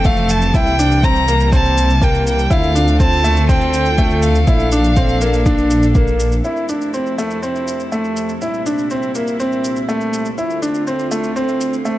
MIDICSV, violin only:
0, 0, Header, 1, 2, 480
1, 0, Start_track
1, 0, Key_signature, -1, "major"
1, 0, Tempo, 491803
1, 531, Time_signature, 4, 2, 24, 8
1, 11694, End_track
2, 0, Start_track
2, 0, Title_t, "Violin"
2, 0, Program_c, 0, 40
2, 57, Note_on_c, 0, 77, 94
2, 299, Note_on_c, 0, 81, 96
2, 313, Note_off_c, 0, 77, 0
2, 543, Note_on_c, 0, 79, 113
2, 557, Note_off_c, 0, 81, 0
2, 1018, Note_on_c, 0, 82, 114
2, 1033, Note_off_c, 0, 79, 0
2, 1494, Note_off_c, 0, 82, 0
2, 1504, Note_on_c, 0, 81, 103
2, 1987, Note_on_c, 0, 79, 97
2, 2002, Note_off_c, 0, 81, 0
2, 2219, Note_off_c, 0, 79, 0
2, 2228, Note_on_c, 0, 79, 91
2, 2463, Note_on_c, 0, 77, 100
2, 2478, Note_off_c, 0, 79, 0
2, 2933, Note_off_c, 0, 77, 0
2, 2938, Note_on_c, 0, 81, 108
2, 3381, Note_off_c, 0, 81, 0
2, 3413, Note_on_c, 0, 79, 100
2, 4131, Note_on_c, 0, 77, 88
2, 4145, Note_off_c, 0, 79, 0
2, 5811, Note_off_c, 0, 77, 0
2, 11694, End_track
0, 0, End_of_file